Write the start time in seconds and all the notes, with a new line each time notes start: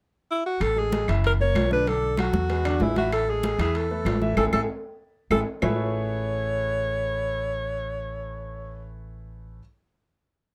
0.31 E4
0.46 F#4
0.60 A1 A4, high conga, high timbale, claves
0.76 G#3 G#4 A4, high conga
0.92 G#3 G#4 A4, high conga, high timbale, low timbale
1.08 F#1 E3 E4 E5, high timbale, claves
1.24 A#4, high conga, high timbale
1.39 A#3 A#4 C#5, high conga
1.54 B1, high conga, high timbale, low timbale, claves
1.71 D3 D4 B4 D5, high conga
1.87 D3 D4 A4 D5, high conga, high timbale
2.03 high conga
2.17 F#3 F#4 A4, high conga, high timbale, low timbale, claves
2.33 E2, high conga
2.49 G#3 G#4 B4, high conga, high timbale
2.65 D3 D4 D5, high conga, high timbale, claves
2.80 A1 G#3 E4 G#4 B4, high conga, low timbale
2.96 E3 E4 F#4 E5, high conga, high timbale
3.12 A4, high conga, high timbale, claves
3.28 G#3 G#4 A4, high conga
3.43 G#3 G#4 A4, high conga, high timbale, low timbale
3.58 E2 E3 E4 G#4 E5, high timbale, claves
3.75 A4, high conga, high timbale
3.91 A3 A4 B4, high conga
4.05 A1, high conga, high timbale, low timbale, claves
4.22 E3 E4 E5, high conga
4.37 A1 E4 G#4 A4, high conga, high timbale, claves
4.52 A1 E4 G#4 A4, high conga, high timbale, claves
5.30 A1 E4 G#4 A4, high conga, high timbale, claves
5.62 A1 A3 E4 G#4 A4 B4 C#5, low conga, low timbale, claves